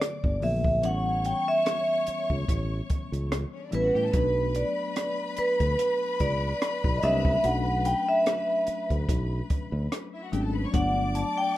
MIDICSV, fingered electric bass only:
0, 0, Header, 1, 3, 480
1, 0, Start_track
1, 0, Key_signature, 2, "minor"
1, 0, Tempo, 825196
1, 485, Time_signature, 4, 2, 24, 8
1, 6733, End_track
2, 0, Start_track
2, 0, Title_t, "Fingered electric bass"
2, 0, Program_c, 0, 33
2, 141, Note_on_c, 0, 31, 77
2, 223, Note_off_c, 0, 31, 0
2, 247, Note_on_c, 0, 34, 81
2, 486, Note_off_c, 0, 34, 0
2, 486, Note_on_c, 0, 33, 89
2, 768, Note_off_c, 0, 33, 0
2, 1340, Note_on_c, 0, 37, 79
2, 1422, Note_off_c, 0, 37, 0
2, 1446, Note_on_c, 0, 33, 77
2, 1629, Note_off_c, 0, 33, 0
2, 1816, Note_on_c, 0, 37, 77
2, 1999, Note_off_c, 0, 37, 0
2, 2170, Note_on_c, 0, 33, 84
2, 2267, Note_off_c, 0, 33, 0
2, 2299, Note_on_c, 0, 45, 70
2, 2382, Note_off_c, 0, 45, 0
2, 2408, Note_on_c, 0, 35, 87
2, 2690, Note_off_c, 0, 35, 0
2, 3260, Note_on_c, 0, 38, 84
2, 3343, Note_off_c, 0, 38, 0
2, 3610, Note_on_c, 0, 37, 79
2, 3792, Note_off_c, 0, 37, 0
2, 3981, Note_on_c, 0, 35, 81
2, 4064, Note_off_c, 0, 35, 0
2, 4091, Note_on_c, 0, 36, 99
2, 4273, Note_off_c, 0, 36, 0
2, 4330, Note_on_c, 0, 35, 98
2, 4611, Note_off_c, 0, 35, 0
2, 5180, Note_on_c, 0, 38, 73
2, 5263, Note_off_c, 0, 38, 0
2, 5287, Note_on_c, 0, 35, 89
2, 5470, Note_off_c, 0, 35, 0
2, 5655, Note_on_c, 0, 38, 81
2, 5740, Note_off_c, 0, 38, 0
2, 6008, Note_on_c, 0, 32, 84
2, 6191, Note_off_c, 0, 32, 0
2, 6247, Note_on_c, 0, 31, 92
2, 6530, Note_off_c, 0, 31, 0
2, 6733, End_track
3, 0, Start_track
3, 0, Title_t, "Muted fingered electric bass strokes"
3, 1208, Note_on_c, 9, 29, 41
3, 1267, Note_off_c, 9, 29, 0
3, 3131, Note_on_c, 9, 29, 44
3, 3189, Note_off_c, 9, 29, 0
3, 5048, Note_on_c, 9, 29, 42
3, 5106, Note_off_c, 9, 29, 0
3, 6733, End_track
0, 0, End_of_file